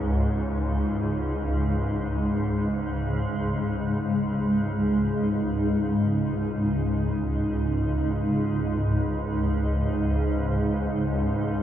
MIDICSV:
0, 0, Header, 1, 4, 480
1, 0, Start_track
1, 0, Tempo, 500000
1, 11164, End_track
2, 0, Start_track
2, 0, Title_t, "Synth texture"
2, 0, Program_c, 0, 99
2, 0, Note_on_c, 0, 73, 79
2, 3741, Note_off_c, 0, 73, 0
2, 11164, End_track
3, 0, Start_track
3, 0, Title_t, "Ambient pad"
3, 0, Program_c, 1, 92
3, 0, Note_on_c, 1, 49, 72
3, 0, Note_on_c, 1, 56, 69
3, 0, Note_on_c, 1, 63, 67
3, 11164, Note_off_c, 1, 49, 0
3, 11164, Note_off_c, 1, 56, 0
3, 11164, Note_off_c, 1, 63, 0
3, 11164, End_track
4, 0, Start_track
4, 0, Title_t, "Synth drone"
4, 0, Program_c, 2, 95
4, 0, Note_on_c, 2, 37, 65
4, 0, Note_on_c, 2, 44, 63
4, 3713, Note_off_c, 2, 37, 0
4, 3724, Note_on_c, 2, 37, 67
4, 3730, Note_off_c, 2, 44, 0
4, 3742, Note_on_c, 2, 44, 67
4, 11164, Note_off_c, 2, 37, 0
4, 11164, Note_off_c, 2, 44, 0
4, 11164, End_track
0, 0, End_of_file